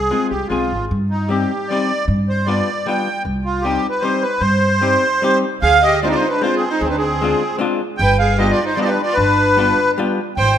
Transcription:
Already playing: G#4
0.11 G#3 C4 F4 G#4
0.30 C2 G4
0.48 B1 G#3 C4 F4
0.52 G#4
0.72 G#1
0.91 G2
1.10 D#4
1.28 G3 C4 D#4 G4
1.68 G3 C4 D#4 G4 D5
2.08 G2
2.29 C5
2.46 G3 B3 D4 F4 D5
2.86 G3 B3 D4 F4 G5
3.25 C2
3.45 F4
3.61 G3 C4 G4
3.66 D#4 G4
3.89 B4
4.01 G3 C4 D#4 G4 C5
4.22 B4
4.40 G2 C5
4.81 G3 C4 D#4 G4
5.22 G3 C4 D#4 G4
5.62 D2 G#4 F5
5.83 G4 D#5
6.02 G#3 C4 D4 F4 C5 D5
6.07 D#4 D5
6.11 F4 C5
6.18 D#4
6.28 D4 B4
6.41 G#3 C4 D4 F4 C5
6.46 F4
6.56 C4 G#4
6.68 D#4 C5
6.80 D2 G#4
6.84 C4
6.89 D4 B4
6.98 C4 G#4
7.21 G#3 C4 D4 F4
7.58 G#3 C4 D4 F4
7.97 G1 G5
8.01 B4
8.19 G#4 F5
8.39 G3 B3 D4 F4 G4 D#5
8.51 F4 D5
8.65 D#4 C5
8.75 G3 B3 D4 F4 D5
8.79 F4 G4 D5 D#5
8.85 D#4 F4 B4 C5
8.93 D4
9.02 F4 D5
9.13 B4
9.18 G1 D4
9.56 G3 B3 D4 F4
9.98 G3 B3 D4 F4
10.36 G#1 C5 G5

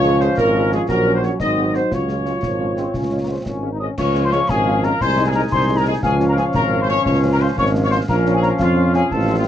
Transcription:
Already playing: C#2 F3 C#4 F4 C#5
0.03 F3 G#3 G#4, snare
0.20 F3 G#3 G#4 C5, snare
0.38 G#1 A#4, concert bass drum, snare
0.55 F3 G#3 G#4
0.71 F3 G#3 G#4, snare
0.89 A#1 F#3 F#4 A#4, concert bass drum, snare
1.06 F#3 C#4 F#4
1.15 C5
1.23 F#3 C#4 F#4 C#5, snare
1.40 G#1 C4 D#4 D#5, concert bass drum, snare
1.58 G#3 C4 F#4
1.74 G#3 C4 F#4 C5, snare
1.91 C#2 C#4 F4 C#5, concert bass drum, snare
2.08 G#3 C#4 F4, snare
2.25 G#3 C#4 F4, snare
2.43 G#1 F3, concert bass drum, snare
2.60 G#3 C#4 F4
2.76 G#3 C4 C#4 F4, snare
2.94 C#2 C#4, concert bass drum, snare
3.11 G#3 C#4 F4
3.21 A#3
3.29 G#3 C4 C#4 F4
3.45 G#1 C#4, concert bass drum, snare
3.63 G#3 C#4 F4
3.72 D#4
3.80 G#3 C#4 F4 D#5 D#6
3.97 C#2 F3 C#4 C#5 F5 C#6, concert bass drum, snare, crash
4.15 G#3 C#4 F4, snare
4.25 C5 C6
4.32 G#3 C#4 F4 C#5 C#6, snare
4.49 G#1 G#4 G#5, concert bass drum, snare
4.66 G#3 C#4 F4
4.83 G#3 C#4 F4 A#4 A#5, snare
5.01 C2 G#3 D#4 C5 G#5 C6, concert bass drum, snare
5.17 G#3 D#4
5.26 G#4 G#5
5.34 G#3 D#4 A#4 A#5
5.52 C2 C5 C6, concert bass drum, snare
5.69 G#3 D#4
5.77 A#4 A#5
5.86 G#3 D#4 G#4 G#5
6.03 C#2 F3 C#4 G#4 F5 G#5, concert bass drum, snare
6.20 F3 C#4 F4, snare
6.29 A#4 A#5
6.37 F3 C#4 F4 G#4 G#5, snare
6.54 G#1 A#4 A#5, concert bass drum, snare
6.73 F3 C#4 F4
6.81 C5 C6
6.89 F3 C#4 F4 C#5 C#6, snare
7.05 C#2 C#5 C#6, concert bass drum, snare
7.23 F3 C#4 F4
7.32 A#4 A#5
7.40 F3 C#4 F4 C5 C6
7.57 G#1 C#5 C#6, concert bass drum, snare
7.75 F3 C#4 F4
7.83 C#5 C#6
7.90 F3 C#4 F4 C5 C6
8.08 A#1 F3 C#4 A#4 F5 A#5, concert bass drum, snare, crash
8.26 F3 C#4 F4, snare
8.34 G#4 G#5
8.42 F3 C#4 F4 A#4 A#5, snare
8.60 F2 F4 F5, concert bass drum, snare
8.76 F3 C#4 F4
8.94 F3 C#4 F4 G#4 G#5, snare
9.11 A1 C4 A4 A5, concert bass drum, snare
9.29 F3 C4 F4
9.37 F4 F5

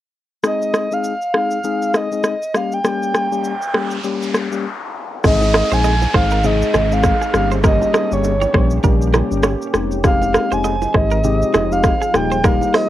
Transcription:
0.44 G#3 C4 D#4 G#4 D#5, cross-stick, shaker
0.62 shaker
0.74 cross-stick, shaker
0.91 G#3 C4 D#4 G#4 F5, shaker
1.04 shaker
1.22 shaker
1.34 G#3 C4 D#4 G#4 F5, cross-stick
1.51 shaker
1.64 G#3 C4 D#4 G#4, shaker
1.82 shaker
1.94 D#5, cross-stick, shaker
2.11 G#3 C4 D#4 G#4, shaker
2.24 cross-stick, shaker
2.42 shaker
2.54 G3 A#3 C#4 G4 F5, cross-stick, shaker
2.72 G5, shaker
2.84 G3 A#3 C#4 G4, cross-stick, noise sweep, shaker
3.02 shaker
3.14 cross-stick, shaker
3.31 G3 A#3 C#4 G4, shaker
3.44 shaker
3.62 shaker
3.74 G3 A#3 C#4 G4, cross-stick
3.91 shaker
4.04 G3 A#3 C#4 G4, shaker
4.22 shaker
4.34 cross-stick, shaker
4.51 G3 A#3 C#4 G4, shaker
5.24 G#1 G#3 C4 D#4 G#4 D#5, kick, cross-stick, downlifter, low conga, shaker
5.41 low bongo, shaker
5.54 A#4, cross-stick, high bongo, shaker
5.71 A#1 G#3 C4 D#4 G#4 C5 G#5, shaker
5.84 D#5, high bongo, shaker
6.02 low bongo, shaker
6.14 G#1 G#3 C4 D#4 G#4 C5 F5, kick, cross-stick
6.31 A#4, shaker
6.44 G#3 C4 D#4 G#4 D#5, low conga, shaker
6.62 shaker
6.74 G#1 G#4, cross-stick, low bongo, low conga, shaker
6.91 G#3 C4 D#4 G#4 F5, shaker
7.03 kick, cross-stick, high bongo, shaker
7.22 G#4, shaker
7.34 G1 G3 A#3 C#4 G4 F5, cross-stick, shaker
7.52 C5, shaker
7.64 G3 A#3 C#4 G4 A#4 D#5, kick, cross-stick, low conga, shaker
7.81 low bongo, shaker
7.94 A#4, cross-stick, high bongo, shaker
8.11 G1 G3 A#3 C#4 G4 C#5, shaker
8.24 high bongo, shaker
8.41 C#5, low bongo, shaker
8.54 A#1 G3 A#3 C#4 G4 C5, kick, cross-stick
8.71 shaker
8.84 A#1 G3 A#3 C#4 G4 A#4, kick, low conga, shaker
9.02 shaker
9.14 A#4, cross-stick, low bongo, low conga, shaker
9.31 G1 G3 A#3 C#4 G4, shaker
9.43 C#5, cross-stick, high bongo, shaker
9.62 shaker
9.74 F1 F3 G#3 C4 D#4 G4, cross-stick, shaker
9.92 shaker
10.04 G#3 C4 D#4 G4 F5, kick, cross-stick, low conga, shaker
10.22 low bongo, shaker
10.34 A#4, cross-stick, high bongo, shaker
10.51 F1 G#3 C4 D#4 G4 C5 G#5, shaker
10.64 D#5, high bongo, shaker
10.82 low bongo, shaker
10.94 G#1 G#3 C4 D#4 G4 C5 D#5, kick, cross-stick
11.11 A#4, shaker
11.24 G#3 C4 D#4 G4, low conga, shaker
11.42 shaker
11.54 F1 G#4, cross-stick, low bongo, low conga, shaker
11.71 G#3 C4 D#4 G4 F5, shaker
11.83 kick, cross-stick, high bongo, shaker
12.01 G#4, shaker
12.14 D#1 D#3 G3 A#3 D#4 G4 A#4 G5, cross-stick, shaker
12.32 C5, shaker
12.44 G3 A#3 D#4 G4 A#4 F5, kick, cross-stick, low conga, shaker
12.61 low bongo, shaker
12.74 C5 D#5, cross-stick, open hi-hat, high bongo, shaker

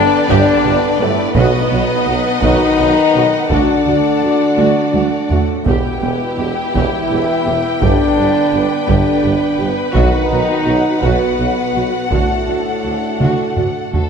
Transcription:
Already playing: D3 B3 D4 B4 D5 G5
0.29 G1 G2 D3 D4 G4, taiko
0.65 G1 G2 G4
0.99 G1 G2 A2 A3 G4
1.34 B1 B2 B3 D#4 F#4 B4 D#5 F#5, taiko
1.70 B1 B2 F#4
2.07 B1 B2 F#4
2.41 B1 B2 D#3 D#4 F#4, taiko
2.78 B1 B2 F#4
3.14 B1 B2 F#4
3.49 D2 D3 A3 D4 F#4 A4 D5, taiko
3.86 D2 F#4
4.22 D2 F#4
4.58 D2 F#4, taiko high
4.93 D2 F#4, taiko high
5.28 D2 A2 A3 F#4, taiko low
5.65 E1 E2 B2 B3 E4 G4 B4 G5, taiko
6.01 E1 E2 G4
6.38 E1 E2 G4
6.74 E1 E2 E3 E4 G4, taiko
7.11 E1 E2 G4
7.45 E1 E2 G4
7.81 G1 G2 D3 D4 G4 B4, taiko
8.16 G1 G2 G4
8.52 G1 G2 G4
8.87 G1 G2 D3 D4 G4, taiko
9.22 G1 G2 G4
9.58 G1 G2 G4
9.93 B1 B2 D#3 D#4 F#4 F#5, taiko
10.30 B1 B2 F#4
10.65 B1 B2 F#4
11.01 B1 B2 B3 F#4, taiko
11.37 B1 B2 F#4
11.74 B1 B2 F#4
12.11 D2 A2 D3 A3 D4 F#4 A4, taiko
12.47 D2 D3 F#4
12.83 D2 D3 F#4
13.20 D2 D3 F#4, taiko mid
13.56 D2 D3 F#4, taiko low-mid
13.93 D2 D3 F#4 A4, taiko low

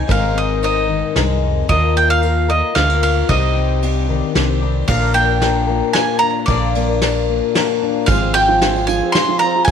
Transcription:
Already playing: D#3 G#5
0.07 G#1 G#2 G#3 C4 D#4 A#4 F5, kick, ride
0.35 C4 D#5
0.61 G#3 C4 D#4 A#4 D#5, ride
0.88 D#3 D#4
1.15 C2 G2 G#3 C4 D#4 A#4, snare, ride
1.42 F2
1.68 D#2 D#3 F3 A#3 F4 A#4 D#5, kick, ride
1.95 A#3 G5
2.10 F5
2.22 F3 A#3 F4 A#4, ride
2.48 A#3 F4 A#4 D#5
2.75 D2 F3 G#3 A#3 F4 A#4 F5, snare, ride
2.90 A#3
3.02 F4 F5, ride
3.28 C2 C3 D#3 G3 C4 D#4 G4 D#5, kick, ride
3.56 C4
3.81 G3 C4 D4 G4, ride
4.08 D#3 G3 C4 D4 D#4 G4
4.35 C2 G3 C4 D4 G4, snare, ride
4.61 G3 C4 D4 D#4 G4
4.88 A#1 A#2 D3 F3 A#3 D4 F4 A#4 F5, kick, crash
5.14 A#3 G5, ride
5.41 F3 A#3 D4 A#4, snare, ride
5.67 F3 A#3 D4 A#4
5.93 F3 A#3 D4 F4 A#4 G#5, snare, ride
6.19 D4 A#5
6.46 A#1 A#2 D3 F3 A#3 D4 F4 A#4 D5, kick, ride
6.75 A#3, ride
7.01 F3 A#3 D4 A#4, snare, ride
7.29 A#3
7.54 F3 A#3 D4 F4 A#4, snare, ride
7.82 D4
8.06 G#1 F3 G#3 C4 F4 G#4 F5, kick, ride, tambourine
8.22 C4
8.34 F4 G5, ride
8.49 F3
8.61 G#3 C4 F4 G#4, snare, ride, tambourine
8.76 F4, tambourine
8.87 F3 G#5, tambourine
9.02 C4
9.12 G#3 C4 F4 C6, snare, ride
9.16 F4 G#4
9.28 F3
9.39 C4 A#5
9.56 F4
9.65 G#1 G#5, kick, ride, tambourine

